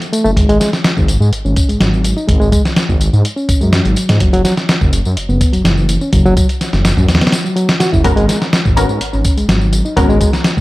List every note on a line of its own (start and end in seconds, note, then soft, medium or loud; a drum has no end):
0.02 closed hi-hat soft
0.02 tambourine soft
0.12 0.23 A3 loud
0.12 closed hi-hat medium
0.12 tambourine medium
0.25 0.35 F#1 medium
0.25 0.30 A3 medium
0.25 tambourine soft
0.36 0.47 G#1 loud
0.36 0.48 G#3 medium
0.36 kick loud
0.36 closed hi-hat medium
0.36 tambourine soft
0.49 0.59 G#1 loud
0.49 0.57 G#3 loud
0.49 closed hi-hat soft
0.49 tambourine soft
0.61 snare medium
0.61 closed hi-hat medium
0.61 tambourine medium
0.73 snare medium
0.73 tambourine soft
0.84 snare loud
0.84 closed hi-hat medium
0.84 tambourine soft
0.97 1.17 G#1 medium
0.97 kick medium
0.97 tambourine soft
1.08 closed hi-hat medium
1.08 tambourine medium
1.20 1.30 G#2 loud
1.20 tambourine soft
1.32 1.43 G#1 soft
1.32 closed hi-hat medium
1.32 tambourine soft
1.45 1.54 G#1 medium
1.45 1.68 C#4 medium
1.45 tambourine soft
1.56 kick medium
1.56 closed hi-hat medium
1.56 tambourine medium
1.69 1.78 G#1 soft
1.69 1.77 G#3 medium
1.69 closed hi-hat soft
1.69 tambourine soft
1.80 2.13 G#1 loud
1.80 2.16 F#3 medium
1.80 snare loud
1.80 closed hi-hat medium
1.80 tambourine soft
1.94 tambourine soft
2.04 closed hi-hat medium
2.04 tambourine medium
2.17 2.25 D#4 medium
2.17 tambourine soft
2.27 2.39 G#1 medium
2.27 2.39 G#3 medium
2.27 kick loud
2.27 closed hi-hat medium
2.27 tambourine soft
2.40 2.50 G#1 loud
2.40 2.49 G#3 loud
2.40 tambourine soft
2.52 2.61 G#3 medium
2.52 kick medium
2.52 closed hi-hat medium
2.52 tambourine medium
2.65 snare medium
2.65 tambourine soft
2.76 snare loud
2.76 closed hi-hat medium
2.76 tambourine soft
2.89 3.09 G#1 medium
2.89 kick medium
2.89 tambourine soft
3.01 closed hi-hat medium
3.01 tambourine medium
3.13 3.23 G#2 loud
3.13 tambourine soft
3.25 closed hi-hat medium
3.25 tambourine soft
3.36 3.60 C#4 medium
3.36 tambourine soft
3.49 kick medium
3.49 closed hi-hat medium
3.49 tambourine medium
3.61 3.81 F#2 loud
3.61 3.69 G#3 medium
3.61 tambourine soft
3.73 4.08 F#3 medium
3.73 snare loud
3.73 closed hi-hat medium
3.73 tambourine soft
3.85 3.95 G#1 medium
3.85 closed hi-hat soft
3.85 tambourine soft
3.96 closed hi-hat medium
3.96 tambourine medium
4.09 4.19 G#2 loud
4.09 4.17 D#4 medium
4.09 snare loud
4.09 closed hi-hat medium
4.09 tambourine soft
4.20 4.31 F#1 medium
4.20 4.32 F#3 medium
4.20 kick loud
4.20 closed hi-hat medium
4.20 tambourine soft
4.33 4.43 F#1 loud
4.33 4.41 F#3 loud
4.33 closed hi-hat soft
4.33 tambourine soft
4.44 4.54 F#3 medium
4.44 snare medium
4.44 closed hi-hat medium
4.44 tambourine medium
4.57 snare medium
4.57 tambourine soft
4.69 snare loud
4.69 closed hi-hat medium
4.69 tambourine soft
4.81 5.01 F#1 medium
4.81 kick medium
4.81 tambourine soft
4.93 closed hi-hat medium
4.93 tambourine medium
5.05 5.15 F#2 loud
5.05 tambourine soft
5.17 5.27 F#1 soft
5.17 closed hi-hat medium
5.17 tambourine soft
5.29 5.38 F#1 medium
5.29 5.52 B3 medium
5.29 tambourine soft
5.41 kick medium
5.41 closed hi-hat medium
5.41 tambourine medium
5.53 5.63 F#1 soft
5.53 5.61 F#3 medium
5.53 closed hi-hat soft
5.53 tambourine soft
5.64 5.98 F#1 medium
5.64 6.00 E3 medium
5.64 snare loud
5.64 closed hi-hat medium
5.64 tambourine soft
5.77 tambourine soft
5.89 closed hi-hat medium
5.89 tambourine medium
6.01 6.10 C#4 medium
6.01 tambourine soft
6.13 6.23 F#1 medium
6.13 6.24 F#3 medium
6.13 kick loud
6.13 closed hi-hat medium
6.13 tambourine soft
6.25 6.35 F#1 loud
6.25 6.34 F#3 loud
6.25 tambourine soft
6.37 6.46 F#3 medium
6.37 kick loud
6.37 closed hi-hat medium
6.37 tambourine medium
6.49 closed hi-hat soft
6.49 tambourine soft
6.61 snare soft
6.61 closed hi-hat medium
6.61 tambourine soft
6.73 6.93 F#1 medium
6.73 snare soft
6.73 tambourine soft
6.85 snare loud
6.85 closed hi-hat medium
6.85 tambourine medium
6.97 7.07 F#2 loud
6.97 kick medium
6.97 tambourine soft
7.08 7.19 E2 medium
7.08 snare medium
7.08 closed hi-hat medium
7.08 tambourine soft
7.15 snare medium
7.15 closed hi-hat medium
7.21 7.32 B3 medium
7.21 snare medium
7.21 closed hi-hat medium
7.21 tambourine soft
7.27 snare medium
7.27 closed hi-hat medium
7.32 snare loud
7.32 closed hi-hat medium
7.32 tambourine medium
7.45 7.53 F#3 medium
7.45 tambourine soft
7.56 7.68 F#3 medium
7.56 closed hi-hat medium
7.56 tambourine soft
7.69 snare loud
7.69 closed hi-hat medium
7.69 tambourine soft
7.80 7.89 F#4 loud
7.80 snare loud
7.80 closed hi-hat medium
7.80 tambourine medium
7.92 8.03 F#1 loud
7.92 8.01 E4 medium
7.92 kick medium
7.92 tambourine soft
8.04 8.15 G#1 loud
8.04 8.15 G#3 medium
8.04 8.11 B3 medium
8.04 8.11 C#4 medium
8.04 8.11 F#4 medium
8.04 8.11 A#4 loud
8.04 kick loud
8.04 closed hi-hat medium
8.04 tambourine soft
8.16 8.27 G#1 loud
8.16 8.25 G#3 loud
8.16 closed hi-hat soft
8.16 tambourine soft
8.28 8.37 G#3 medium
8.28 snare soft
8.28 closed hi-hat medium
8.28 tambourine medium
8.42 snare medium
8.42 tambourine soft
8.53 snare loud
8.53 closed hi-hat medium
8.53 tambourine soft
8.65 8.85 G#1 medium
8.65 kick medium
8.65 tambourine soft
8.76 8.83 B3 medium
8.76 8.83 C#4 medium
8.76 8.83 F#4 medium
8.76 8.83 A#4 medium
8.76 closed hi-hat medium
8.76 tambourine medium
8.89 8.99 G#2 loud
8.89 tambourine soft
9.01 9.11 G#1 soft
9.01 closed hi-hat medium
9.01 tambourine soft
9.13 9.23 G#1 medium
9.13 9.36 C#4 medium
9.13 tambourine soft
9.24 kick medium
9.24 closed hi-hat medium
9.24 tambourine medium
9.37 9.47 G#1 soft
9.37 9.45 G#3 medium
9.37 closed hi-hat soft
9.37 tambourine soft
9.49 9.82 G#1 medium
9.49 9.84 F#3 medium
9.49 snare loud
9.49 closed hi-hat medium
9.49 tambourine soft
9.61 tambourine soft
9.73 closed hi-hat medium
9.73 tambourine medium
9.85 9.93 D#4 medium
9.85 tambourine soft
9.96 10.07 G#1 loud
9.96 10.08 G#3 medium
9.96 10.61 B3 medium
9.96 10.61 C#4 medium
9.96 10.61 F#4 medium
9.96 10.61 A#4 loud
9.96 kick loud
9.96 closed hi-hat medium
9.96 tambourine soft
10.09 10.18 G#1 loud
10.09 10.18 G#3 loud
10.09 tambourine soft
10.20 10.30 G#3 medium
10.20 kick loud
10.20 closed hi-hat medium
10.20 tambourine medium
10.33 snare medium
10.33 tambourine soft
10.44 snare loud
10.44 closed hi-hat medium
10.44 tambourine soft
10.57 10.61 G#1 medium
10.57 kick medium
10.57 tambourine soft